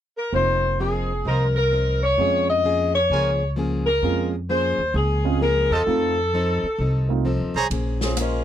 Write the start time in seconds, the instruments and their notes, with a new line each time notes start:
0.17 saxophone section A#4
0.32 upright bass F1, steel-string acoustic guitar F3 C4 D#4 A#4, grand piano A#3 C4 D#4 F4, saxophone section C5
0.79 steel-string acoustic guitar F3 C4 D#4 A#4, saxophone section G#4
1.25 upright bass C2, steel-string acoustic guitar F3 C4 D#4 A#4, trumpet section F4 C5 D#5 A#5, saxophone section A#4
1.57 saxophone section A#4
1.72 steel-string acoustic guitar F3 C4 D#4 A#4
2.03 saxophone section C#5
2.18 upright bass F2, steel-string acoustic guitar F3 A#3 C#4 G#4, grand piano G#3 C4 C#4 F4
2.50 saxophone section D#5
2.64 steel-string acoustic guitar F3 A#3 C#4 G#4
2.95 saxophone section C#5
3.10 upright bass C#2, steel-string acoustic guitar F3 A#3 C#4 G#4, trumpet section F4 A#4 C#5 G#5
3.56 steel-string acoustic guitar F3 A#3 C#4 G#4
3.87 saxophone section A#4
4.02 upright bass F2, steel-string acoustic guitar F3 A#3 C#4 G#4, grand piano G#3 C4 C#4 F4
4.49 steel-string acoustic guitar F3 A#3 C#4 G#4, saxophone section C5
4.78 upright bass D#2
4.94 upright bass C#2, steel-string acoustic guitar F3 A#3 C#4 G#4, saxophone section G#4
5.24 grand piano G#3 C4 C#4 F4
5.41 steel-string acoustic guitar F3 A#3 C#4 G#4, saxophone section A#4
5.70 upright bass E2, trumpet section F4 C5 D#5 A5, saxophone section A4
5.86 upright bass F2, steel-string acoustic guitar F3 C4 D#4, grand piano A3 C4 D#4 F4
5.90 steel-string acoustic guitar A4
6.34 steel-string acoustic guitar F3 C4 D#4 A4
6.63 muted upright bass stroke
6.78 upright bass C2, steel-string acoustic guitar F3 C4 D#4 A4
7.09 grand piano A3 C4 D#4 F4
7.25 steel-string acoustic guitar F3 C4 D#4 A4
7.40 upright bass D#2
7.55 upright bass B1, trumpet section G#4 C5 C#5 A#5
7.70 upright bass A#1, steel-string acoustic guitar A#3 C#4 G#4 C5, ride
8.01 saxophone section F3 C4 C#4 G#4, snare
8.17 saxophone section G#3 C#4 F4 A#4, steel-string acoustic guitar A#3 C#4 G#4 C5, hi-hat pedal, ride